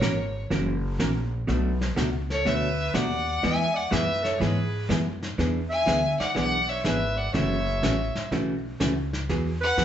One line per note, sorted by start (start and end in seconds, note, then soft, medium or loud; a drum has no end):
0.00 0.49 G#1 medium
0.00 0.13 E3 medium
0.00 0.13 A#3 medium
0.00 0.14 C#4 medium
0.00 0.14 F#4 medium
0.00 0.45 A#4 medium
0.00 0.14 A#4 medium
0.00 0.45 C#5 medium
0.00 snare medium
0.00 hi-hat pedal medium
0.50 0.98 F#1 medium
0.50 0.73 E3 medium
0.50 0.73 A#3 medium
0.50 0.73 C#4 medium
0.50 0.73 F#4 medium
0.50 0.74 A#4 medium
0.50 brush sweep soft
0.50 snare soft
0.99 1.46 A#1 medium
0.99 1.11 E3 medium
0.99 1.11 A#3 medium
0.99 1.12 C#4 medium
0.99 1.12 F#4 medium
0.99 1.12 A#4 medium
0.99 snare medium
0.99 hi-hat pedal medium
1.47 1.96 B1 medium
1.47 1.70 B2 medium
1.47 1.70 F#3 medium
1.47 1.71 A3 medium
1.47 1.71 D4 medium
1.47 1.71 F#4 medium
1.47 brush sweep soft
1.47 snare soft
1.81 snare soft
1.96 2.44 C#2 medium
1.96 2.09 B2 medium
1.96 2.09 F#3 medium
1.96 2.09 A3 medium
1.96 2.09 D4 medium
1.96 2.09 F#4 medium
1.96 snare medium
1.96 hi-hat pedal medium
2.30 2.49 A4 medium
2.30 2.49 C#5 medium
2.30 snare soft
2.45 2.93 D2 medium
2.45 2.68 B2 medium
2.45 2.68 F#3 medium
2.45 2.69 A3 medium
2.45 2.69 D4 medium
2.45 2.69 F#4 medium
2.45 2.96 B4 medium
2.45 2.96 E5 medium
2.45 brush sweep medium
2.45 snare soft
2.94 3.42 D#2 loud
2.94 3.06 B2 medium
2.94 3.06 F#3 medium
2.94 3.06 A3 medium
2.94 3.06 D4 medium
2.94 3.07 F#4 medium
2.94 3.45 D5 medium
2.94 3.45 F#5 loud
2.94 snare medium
2.94 hi-hat pedal medium
3.43 3.91 E2 medium
3.43 3.66 E3 medium
3.43 3.66 G#3 medium
3.43 3.66 B3 medium
3.43 3.66 E4 medium
3.43 3.66 G#4 medium
3.43 3.76 E5 medium
3.43 3.77 G#5 loud
3.43 brush sweep soft
3.43 snare soft
3.74 3.93 D5 medium
3.74 3.93 F#5 medium
3.91 4.39 F#2 medium
3.91 4.03 E3 medium
3.91 4.04 G#3 medium
3.91 4.04 B3 medium
3.91 4.04 E4 medium
3.91 4.04 G#4 medium
3.91 4.24 B4 medium
3.91 4.26 E5 loud
3.91 snare medium
3.91 hi-hat pedal medium
4.23 4.40 A4 medium
4.23 4.42 C#5 medium
4.23 snare soft
4.39 4.88 G#2 medium
4.39 4.63 E3 medium
4.39 4.63 G#3 medium
4.39 4.63 B3 medium
4.39 4.64 E4 medium
4.39 4.88 G#4 medium
4.39 4.64 G#4 medium
4.39 4.89 B4 medium
4.39 brush sweep medium
4.39 snare soft
4.89 5.37 F#2 medium
4.89 5.01 E3 medium
4.89 5.01 G#3 medium
4.89 5.01 B3 medium
4.89 5.02 E4 medium
4.89 5.02 G#4 medium
4.89 snare medium
4.89 hi-hat pedal medium
5.23 snare soft
5.38 5.85 E2 medium
5.38 5.61 E3 medium
5.38 5.61 B3 medium
5.38 5.61 D4 medium
5.38 5.62 G#4 medium
5.38 brush sweep soft
5.38 snare soft
5.70 6.16 E5 medium
5.70 6.16 G#5 loud
5.86 6.17 D2 medium
5.86 5.99 E3 medium
5.86 5.99 B3 medium
5.86 5.99 D4 medium
5.86 5.99 G#4 medium
5.86 snare medium
5.86 hi-hat pedal medium
6.19 6.35 D5 medium
6.19 6.35 F#5 medium
6.19 muted upright bass stroke soft
6.19 snare soft
6.35 6.83 B1 medium
6.35 6.58 E3 medium
6.35 6.58 B3 medium
6.35 6.59 D4 medium
6.35 6.59 G#4 medium
6.35 6.71 D5 medium
6.35 6.70 F#5 loud
6.35 brush sweep soft
6.35 snare soft
6.69 6.85 C#5 medium
6.69 6.84 E5 medium
6.84 7.32 G#1 medium
6.84 6.97 E3 medium
6.84 6.97 B3 medium
6.84 6.97 D4 medium
6.84 6.97 G#4 medium
6.84 7.18 B4 medium
6.84 7.19 E5 medium
6.84 snare medium
6.84 hi-hat pedal medium
7.17 7.32 D5 medium
7.17 7.33 F#5 medium
7.32 7.81 F#1 medium
7.32 7.56 C#3 soft
7.32 7.57 E3 medium
7.32 7.57 A3 medium
7.32 7.57 C#4 medium
7.32 7.57 F#4 medium
7.32 8.27 C#5 medium
7.32 8.27 E5 medium
7.32 brush sweep soft
7.32 snare soft
7.82 8.13 A1 medium
7.82 7.95 C#3 medium
7.82 7.95 E3 medium
7.82 7.95 A3 medium
7.82 7.95 C#4 medium
7.82 7.95 F#4 medium
7.82 snare medium
7.82 hi-hat pedal medium
8.16 muted upright bass stroke soft
8.16 snare soft
8.31 8.79 B1 medium
8.31 8.54 C#3 medium
8.31 8.54 E3 medium
8.31 8.55 A3 medium
8.31 8.55 C#4 medium
8.31 8.55 F#4 medium
8.31 brush sweep soft
8.31 snare soft
8.80 9.27 C#2 medium
8.80 8.92 C#3 medium
8.80 8.92 E3 medium
8.80 8.92 A3 medium
8.80 8.93 C#4 medium
8.80 8.93 F#4 medium
8.80 snare medium
8.80 hi-hat pedal medium
9.13 snare soft
9.29 9.76 E2 medium
9.29 9.52 E3 medium
9.29 9.52 F#3 medium
9.29 9.52 B3 medium
9.29 9.52 F#4 medium
9.29 9.52 G#4 medium
9.29 brush sweep soft
9.29 snare soft
9.61 9.85 B4 loud
9.61 9.85 F#5 loud
9.77 9.85 F#2 medium
9.77 9.85 E3 medium
9.77 9.85 F#3 medium
9.77 9.85 B3 medium
9.77 9.85 F#4 medium
9.77 9.85 G#4 medium
9.77 snare medium
9.77 hi-hat pedal medium